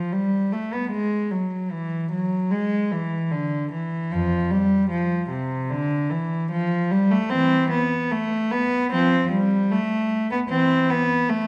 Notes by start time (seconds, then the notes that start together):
Already playing: F3
0.12 G3
0.52 A3
0.73 B3
0.91 G#3
1.31 F#3
1.71 E3
2.11 F#3
2.51 G#3
2.92 E3
3.31 D3
3.72 E3
4.12 F2 F3
4.51 G3
4.90 F3
5.30 C3
5.70 D3
6.10 E3
6.51 F3
6.91 G3
7.11 A3
7.30 E3 C4
7.70 B3
8.11 A3
8.51 B3
8.92 F3 C4
9.31 G3
9.71 A3
10.31 B3
10.50 E3 C4
10.90 B3
11.29 A3